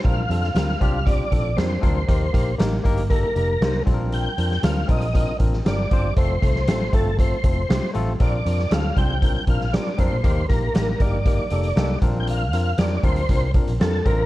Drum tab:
HH |x-x-x-x-x-x-x-x-|x-x-x-xxx-x-x-x-|x-x-x-xxx-x-x-x-|x-x-x-x-x-x-x-x-|
SD |---oo-------o---|----o-------o---|---oo------oo---|---oo-------o---|
BD |o-----o-o-o---o-|o-o---o-o-----o-|------o-o-o---o-|o-o---o-o-o-----|

HH |x-x-x-x-x-x-x-x-|x-x-x-x-x-xxx-x-|x-x-x-xxx-xxx-x-|
SD |---oo------oo---|----o-------o---|----o-------o---|
BD |o-----o-o-o---o-|o-o---o-o-----o-|------o-o-o---o-|